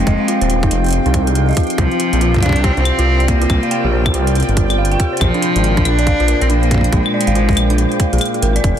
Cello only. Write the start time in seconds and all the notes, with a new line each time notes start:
Already playing: G#3
1.78 F3
2.43 D4
2.64 C4
2.73 D4
2.80 C4
3.28 A#3
5.21 F3
5.85 D4
6.42 C4
6.50 A#3
6.93 G#3